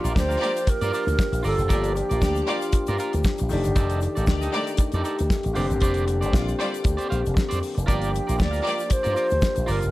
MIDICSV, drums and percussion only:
0, 0, Header, 1, 2, 480
1, 0, Start_track
1, 0, Key_signature, -2, "minor"
1, 0, Tempo, 514580
1, 1587, Time_signature, 4, 2, 24, 8
1, 9245, End_track
2, 0, Start_track
2, 0, Title_t, "Drums"
2, 47, Note_on_c, 9, 82, 65
2, 48, Note_on_c, 9, 42, 52
2, 140, Note_off_c, 9, 82, 0
2, 141, Note_off_c, 9, 42, 0
2, 149, Note_on_c, 9, 36, 101
2, 160, Note_on_c, 9, 82, 71
2, 161, Note_on_c, 9, 38, 112
2, 242, Note_off_c, 9, 36, 0
2, 253, Note_off_c, 9, 82, 0
2, 255, Note_off_c, 9, 38, 0
2, 288, Note_on_c, 9, 82, 56
2, 300, Note_on_c, 9, 42, 40
2, 381, Note_off_c, 9, 82, 0
2, 393, Note_off_c, 9, 42, 0
2, 404, Note_on_c, 9, 42, 73
2, 497, Note_off_c, 9, 42, 0
2, 529, Note_on_c, 9, 42, 46
2, 529, Note_on_c, 9, 82, 59
2, 622, Note_off_c, 9, 42, 0
2, 622, Note_off_c, 9, 82, 0
2, 625, Note_on_c, 9, 42, 98
2, 628, Note_on_c, 9, 36, 107
2, 635, Note_on_c, 9, 82, 64
2, 718, Note_off_c, 9, 42, 0
2, 721, Note_off_c, 9, 36, 0
2, 728, Note_off_c, 9, 82, 0
2, 758, Note_on_c, 9, 42, 43
2, 765, Note_on_c, 9, 82, 48
2, 852, Note_off_c, 9, 42, 0
2, 858, Note_off_c, 9, 82, 0
2, 872, Note_on_c, 9, 82, 53
2, 884, Note_on_c, 9, 42, 52
2, 965, Note_off_c, 9, 82, 0
2, 977, Note_off_c, 9, 42, 0
2, 1006, Note_on_c, 9, 42, 45
2, 1009, Note_on_c, 9, 82, 52
2, 1100, Note_off_c, 9, 42, 0
2, 1103, Note_off_c, 9, 82, 0
2, 1108, Note_on_c, 9, 36, 127
2, 1114, Note_on_c, 9, 82, 73
2, 1118, Note_on_c, 9, 38, 123
2, 1201, Note_off_c, 9, 36, 0
2, 1207, Note_off_c, 9, 82, 0
2, 1211, Note_off_c, 9, 38, 0
2, 1240, Note_on_c, 9, 42, 61
2, 1251, Note_on_c, 9, 82, 53
2, 1333, Note_off_c, 9, 42, 0
2, 1342, Note_off_c, 9, 82, 0
2, 1342, Note_on_c, 9, 82, 48
2, 1356, Note_on_c, 9, 46, 67
2, 1435, Note_off_c, 9, 82, 0
2, 1449, Note_off_c, 9, 46, 0
2, 1478, Note_on_c, 9, 82, 60
2, 1493, Note_on_c, 9, 42, 42
2, 1571, Note_off_c, 9, 82, 0
2, 1587, Note_off_c, 9, 42, 0
2, 1587, Note_on_c, 9, 82, 76
2, 1588, Note_on_c, 9, 42, 76
2, 1589, Note_on_c, 9, 36, 107
2, 1680, Note_off_c, 9, 82, 0
2, 1681, Note_off_c, 9, 42, 0
2, 1682, Note_off_c, 9, 36, 0
2, 1713, Note_on_c, 9, 42, 46
2, 1719, Note_on_c, 9, 82, 47
2, 1807, Note_off_c, 9, 42, 0
2, 1812, Note_off_c, 9, 82, 0
2, 1827, Note_on_c, 9, 82, 46
2, 1836, Note_on_c, 9, 42, 53
2, 1921, Note_off_c, 9, 82, 0
2, 1929, Note_off_c, 9, 42, 0
2, 1967, Note_on_c, 9, 42, 54
2, 1967, Note_on_c, 9, 82, 57
2, 2060, Note_off_c, 9, 82, 0
2, 2061, Note_off_c, 9, 42, 0
2, 2068, Note_on_c, 9, 36, 95
2, 2070, Note_on_c, 9, 82, 74
2, 2080, Note_on_c, 9, 38, 99
2, 2161, Note_off_c, 9, 36, 0
2, 2163, Note_off_c, 9, 82, 0
2, 2173, Note_off_c, 9, 38, 0
2, 2198, Note_on_c, 9, 82, 53
2, 2215, Note_on_c, 9, 42, 40
2, 2291, Note_off_c, 9, 82, 0
2, 2308, Note_off_c, 9, 42, 0
2, 2318, Note_on_c, 9, 42, 72
2, 2411, Note_off_c, 9, 42, 0
2, 2440, Note_on_c, 9, 82, 56
2, 2447, Note_on_c, 9, 42, 45
2, 2534, Note_off_c, 9, 82, 0
2, 2540, Note_off_c, 9, 42, 0
2, 2541, Note_on_c, 9, 82, 64
2, 2542, Note_on_c, 9, 42, 99
2, 2547, Note_on_c, 9, 36, 103
2, 2635, Note_off_c, 9, 82, 0
2, 2636, Note_off_c, 9, 42, 0
2, 2640, Note_off_c, 9, 36, 0
2, 2675, Note_on_c, 9, 42, 41
2, 2677, Note_on_c, 9, 82, 53
2, 2768, Note_off_c, 9, 42, 0
2, 2770, Note_off_c, 9, 82, 0
2, 2787, Note_on_c, 9, 82, 47
2, 2796, Note_on_c, 9, 42, 53
2, 2880, Note_off_c, 9, 82, 0
2, 2889, Note_off_c, 9, 42, 0
2, 2920, Note_on_c, 9, 42, 44
2, 2928, Note_on_c, 9, 82, 50
2, 3013, Note_off_c, 9, 42, 0
2, 3022, Note_off_c, 9, 82, 0
2, 3022, Note_on_c, 9, 82, 72
2, 3027, Note_on_c, 9, 36, 116
2, 3039, Note_on_c, 9, 38, 111
2, 3115, Note_off_c, 9, 82, 0
2, 3120, Note_off_c, 9, 36, 0
2, 3132, Note_off_c, 9, 38, 0
2, 3154, Note_on_c, 9, 42, 60
2, 3155, Note_on_c, 9, 82, 56
2, 3247, Note_off_c, 9, 42, 0
2, 3249, Note_off_c, 9, 82, 0
2, 3257, Note_on_c, 9, 82, 53
2, 3271, Note_on_c, 9, 46, 75
2, 3350, Note_off_c, 9, 82, 0
2, 3364, Note_off_c, 9, 46, 0
2, 3396, Note_on_c, 9, 82, 60
2, 3406, Note_on_c, 9, 42, 43
2, 3489, Note_off_c, 9, 82, 0
2, 3499, Note_off_c, 9, 42, 0
2, 3504, Note_on_c, 9, 42, 77
2, 3507, Note_on_c, 9, 36, 112
2, 3510, Note_on_c, 9, 82, 74
2, 3598, Note_off_c, 9, 42, 0
2, 3600, Note_off_c, 9, 36, 0
2, 3603, Note_off_c, 9, 82, 0
2, 3634, Note_on_c, 9, 42, 45
2, 3644, Note_on_c, 9, 82, 49
2, 3727, Note_off_c, 9, 42, 0
2, 3737, Note_off_c, 9, 82, 0
2, 3739, Note_on_c, 9, 82, 49
2, 3755, Note_on_c, 9, 42, 57
2, 3832, Note_off_c, 9, 82, 0
2, 3848, Note_off_c, 9, 42, 0
2, 3887, Note_on_c, 9, 42, 51
2, 3887, Note_on_c, 9, 82, 59
2, 3980, Note_off_c, 9, 42, 0
2, 3980, Note_off_c, 9, 82, 0
2, 3981, Note_on_c, 9, 82, 74
2, 3987, Note_on_c, 9, 36, 107
2, 3994, Note_on_c, 9, 38, 112
2, 4075, Note_off_c, 9, 82, 0
2, 4080, Note_off_c, 9, 36, 0
2, 4088, Note_off_c, 9, 38, 0
2, 4120, Note_on_c, 9, 82, 56
2, 4133, Note_on_c, 9, 42, 43
2, 4213, Note_off_c, 9, 82, 0
2, 4226, Note_off_c, 9, 42, 0
2, 4233, Note_on_c, 9, 42, 73
2, 4326, Note_off_c, 9, 42, 0
2, 4356, Note_on_c, 9, 42, 45
2, 4361, Note_on_c, 9, 82, 57
2, 4450, Note_off_c, 9, 42, 0
2, 4452, Note_on_c, 9, 42, 104
2, 4454, Note_off_c, 9, 82, 0
2, 4463, Note_on_c, 9, 36, 112
2, 4468, Note_on_c, 9, 82, 74
2, 4545, Note_off_c, 9, 42, 0
2, 4556, Note_off_c, 9, 36, 0
2, 4561, Note_off_c, 9, 82, 0
2, 4587, Note_on_c, 9, 42, 42
2, 4596, Note_on_c, 9, 82, 47
2, 4680, Note_off_c, 9, 42, 0
2, 4689, Note_off_c, 9, 82, 0
2, 4707, Note_on_c, 9, 82, 48
2, 4711, Note_on_c, 9, 42, 57
2, 4800, Note_off_c, 9, 82, 0
2, 4805, Note_off_c, 9, 42, 0
2, 4838, Note_on_c, 9, 42, 43
2, 4844, Note_on_c, 9, 82, 46
2, 4931, Note_off_c, 9, 42, 0
2, 4937, Note_off_c, 9, 82, 0
2, 4945, Note_on_c, 9, 36, 127
2, 4950, Note_on_c, 9, 38, 116
2, 4952, Note_on_c, 9, 82, 78
2, 5039, Note_off_c, 9, 36, 0
2, 5043, Note_off_c, 9, 38, 0
2, 5045, Note_off_c, 9, 82, 0
2, 5068, Note_on_c, 9, 42, 59
2, 5094, Note_on_c, 9, 82, 53
2, 5161, Note_off_c, 9, 42, 0
2, 5180, Note_on_c, 9, 46, 61
2, 5187, Note_off_c, 9, 82, 0
2, 5188, Note_on_c, 9, 82, 50
2, 5273, Note_off_c, 9, 46, 0
2, 5281, Note_off_c, 9, 82, 0
2, 5317, Note_on_c, 9, 42, 38
2, 5325, Note_on_c, 9, 82, 59
2, 5410, Note_off_c, 9, 42, 0
2, 5415, Note_on_c, 9, 42, 71
2, 5418, Note_off_c, 9, 82, 0
2, 5426, Note_on_c, 9, 36, 97
2, 5440, Note_on_c, 9, 82, 83
2, 5508, Note_off_c, 9, 42, 0
2, 5519, Note_off_c, 9, 36, 0
2, 5533, Note_off_c, 9, 82, 0
2, 5541, Note_on_c, 9, 42, 40
2, 5568, Note_on_c, 9, 82, 45
2, 5635, Note_off_c, 9, 42, 0
2, 5661, Note_off_c, 9, 82, 0
2, 5668, Note_on_c, 9, 42, 59
2, 5673, Note_on_c, 9, 82, 48
2, 5761, Note_off_c, 9, 42, 0
2, 5766, Note_off_c, 9, 82, 0
2, 5805, Note_on_c, 9, 42, 53
2, 5808, Note_on_c, 9, 82, 64
2, 5898, Note_off_c, 9, 42, 0
2, 5902, Note_off_c, 9, 82, 0
2, 5909, Note_on_c, 9, 36, 113
2, 5916, Note_on_c, 9, 38, 111
2, 5920, Note_on_c, 9, 82, 74
2, 6002, Note_off_c, 9, 36, 0
2, 6010, Note_off_c, 9, 38, 0
2, 6013, Note_off_c, 9, 82, 0
2, 6048, Note_on_c, 9, 82, 53
2, 6052, Note_on_c, 9, 42, 40
2, 6141, Note_off_c, 9, 82, 0
2, 6146, Note_off_c, 9, 42, 0
2, 6165, Note_on_c, 9, 42, 75
2, 6258, Note_off_c, 9, 42, 0
2, 6288, Note_on_c, 9, 42, 44
2, 6295, Note_on_c, 9, 82, 62
2, 6381, Note_off_c, 9, 42, 0
2, 6382, Note_on_c, 9, 42, 87
2, 6389, Note_off_c, 9, 82, 0
2, 6389, Note_on_c, 9, 36, 114
2, 6399, Note_on_c, 9, 82, 70
2, 6476, Note_off_c, 9, 42, 0
2, 6482, Note_off_c, 9, 36, 0
2, 6492, Note_off_c, 9, 82, 0
2, 6514, Note_on_c, 9, 42, 44
2, 6535, Note_on_c, 9, 82, 53
2, 6607, Note_off_c, 9, 42, 0
2, 6629, Note_off_c, 9, 82, 0
2, 6641, Note_on_c, 9, 82, 49
2, 6642, Note_on_c, 9, 42, 52
2, 6734, Note_off_c, 9, 82, 0
2, 6735, Note_off_c, 9, 42, 0
2, 6772, Note_on_c, 9, 82, 52
2, 6776, Note_on_c, 9, 42, 46
2, 6865, Note_off_c, 9, 82, 0
2, 6869, Note_off_c, 9, 42, 0
2, 6873, Note_on_c, 9, 36, 121
2, 6873, Note_on_c, 9, 82, 76
2, 6886, Note_on_c, 9, 38, 120
2, 6966, Note_off_c, 9, 36, 0
2, 6966, Note_off_c, 9, 82, 0
2, 6979, Note_off_c, 9, 38, 0
2, 7004, Note_on_c, 9, 42, 60
2, 7015, Note_on_c, 9, 82, 53
2, 7017, Note_on_c, 9, 38, 33
2, 7098, Note_off_c, 9, 42, 0
2, 7109, Note_off_c, 9, 82, 0
2, 7111, Note_off_c, 9, 38, 0
2, 7116, Note_on_c, 9, 46, 67
2, 7120, Note_on_c, 9, 82, 48
2, 7209, Note_off_c, 9, 46, 0
2, 7214, Note_off_c, 9, 82, 0
2, 7253, Note_on_c, 9, 42, 43
2, 7258, Note_on_c, 9, 82, 59
2, 7347, Note_off_c, 9, 42, 0
2, 7351, Note_off_c, 9, 82, 0
2, 7352, Note_on_c, 9, 42, 67
2, 7353, Note_on_c, 9, 36, 106
2, 7361, Note_on_c, 9, 82, 79
2, 7445, Note_off_c, 9, 42, 0
2, 7446, Note_off_c, 9, 36, 0
2, 7455, Note_off_c, 9, 82, 0
2, 7477, Note_on_c, 9, 42, 47
2, 7494, Note_on_c, 9, 82, 53
2, 7570, Note_off_c, 9, 42, 0
2, 7587, Note_off_c, 9, 82, 0
2, 7601, Note_on_c, 9, 82, 44
2, 7608, Note_on_c, 9, 42, 60
2, 7694, Note_off_c, 9, 82, 0
2, 7701, Note_off_c, 9, 42, 0
2, 7734, Note_on_c, 9, 42, 49
2, 7734, Note_on_c, 9, 82, 64
2, 7828, Note_off_c, 9, 42, 0
2, 7828, Note_off_c, 9, 82, 0
2, 7830, Note_on_c, 9, 82, 66
2, 7833, Note_on_c, 9, 36, 104
2, 7851, Note_on_c, 9, 38, 104
2, 7923, Note_off_c, 9, 82, 0
2, 7927, Note_off_c, 9, 36, 0
2, 7944, Note_off_c, 9, 38, 0
2, 7960, Note_on_c, 9, 82, 51
2, 7985, Note_on_c, 9, 42, 40
2, 8053, Note_off_c, 9, 82, 0
2, 8078, Note_off_c, 9, 42, 0
2, 8087, Note_on_c, 9, 42, 73
2, 8180, Note_off_c, 9, 42, 0
2, 8201, Note_on_c, 9, 82, 58
2, 8210, Note_on_c, 9, 42, 46
2, 8294, Note_off_c, 9, 82, 0
2, 8301, Note_off_c, 9, 42, 0
2, 8301, Note_on_c, 9, 42, 98
2, 8308, Note_on_c, 9, 36, 106
2, 8311, Note_on_c, 9, 82, 69
2, 8395, Note_off_c, 9, 42, 0
2, 8402, Note_off_c, 9, 36, 0
2, 8405, Note_off_c, 9, 82, 0
2, 8433, Note_on_c, 9, 42, 44
2, 8442, Note_on_c, 9, 82, 51
2, 8526, Note_off_c, 9, 42, 0
2, 8535, Note_off_c, 9, 82, 0
2, 8548, Note_on_c, 9, 82, 44
2, 8556, Note_on_c, 9, 42, 54
2, 8641, Note_off_c, 9, 82, 0
2, 8650, Note_off_c, 9, 42, 0
2, 8676, Note_on_c, 9, 82, 46
2, 8689, Note_on_c, 9, 42, 47
2, 8769, Note_off_c, 9, 82, 0
2, 8782, Note_off_c, 9, 42, 0
2, 8784, Note_on_c, 9, 82, 67
2, 8789, Note_on_c, 9, 36, 119
2, 8796, Note_on_c, 9, 38, 116
2, 8877, Note_off_c, 9, 82, 0
2, 8882, Note_off_c, 9, 36, 0
2, 8890, Note_off_c, 9, 38, 0
2, 8915, Note_on_c, 9, 42, 56
2, 8923, Note_on_c, 9, 82, 54
2, 9009, Note_off_c, 9, 42, 0
2, 9016, Note_off_c, 9, 82, 0
2, 9029, Note_on_c, 9, 46, 67
2, 9029, Note_on_c, 9, 82, 49
2, 9122, Note_off_c, 9, 46, 0
2, 9122, Note_off_c, 9, 82, 0
2, 9161, Note_on_c, 9, 82, 63
2, 9165, Note_on_c, 9, 42, 43
2, 9245, Note_off_c, 9, 42, 0
2, 9245, Note_off_c, 9, 82, 0
2, 9245, End_track
0, 0, End_of_file